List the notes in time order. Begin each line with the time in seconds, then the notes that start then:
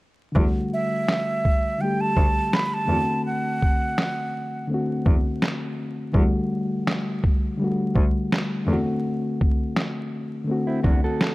0.32 E2 D3 G3, kick
0.36 A3 F#4
0.73 E5
1.08 snare, clap
1.45 kick
1.78 D3 G3 G5
1.83 A3 G4
2.01 A5
2.17 D2, kick
2.53 B5, snare, clap
2.66 B5
2.74 A5
2.85 E2 D3 A3
2.90 C4 F#4
3.26 F#5
3.63 kick
3.98 snare, clap
4.67 D3 A3
4.71 C4 F#4
5.06 E2, kick
5.42 snare, clap
6.12 E2 D3 G3, kick
6.16 A3 F#4
6.87 snare, clap
7.24 kick
7.58 D3 G3
7.62 A3 F#4
7.95 D2, kick
8.32 snare, clap
8.66 E2 D3 A3
8.71 C4 F#4
9.41 kick
9.76 snare, clap
10.45 D3 A3
10.49 C4 F#4
10.67 C4 E4
10.84 E2 D4 F#4, kick
11.04 F#4 A4
11.21 snare, clap